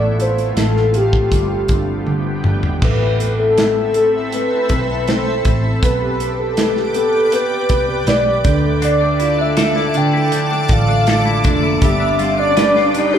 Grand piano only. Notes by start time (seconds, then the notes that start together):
Already playing: A3
0.19 F4
0.57 A3
0.94 F4
1.32 G3
1.69 D4
2.06 G3
2.44 D4
2.81 A3
3.01 E4
3.19 A3
3.39 E4
3.58 A3
3.77 E4
3.96 A3
4.15 E4
4.34 A3
4.52 E4
4.71 A3
4.90 E4
5.08 A3
5.28 E4
5.46 A3
5.64 E4
5.82 B3
6.02 G4
6.20 B3
6.38 G4
6.58 B3
6.76 G4
6.95 B3
7.14 G4
7.33 B3
7.51 G4
7.70 B3
7.89 G4
8.07 B3
8.27 G4
8.45 D3
8.64 A3
8.82 D4
9.01 A3
9.21 F4
9.39 A3
9.57 F4
9.76 A3
9.95 D3
10.15 A3
10.33 D4
10.51 A3
10.70 F4
10.89 A3
11.08 F4
11.27 A3
11.46 D3
11.64 A3
11.82 G3
12.01 D4
12.20 G3
12.38 D4
12.57 G3
12.75 D4
12.94 G3
13.13 D4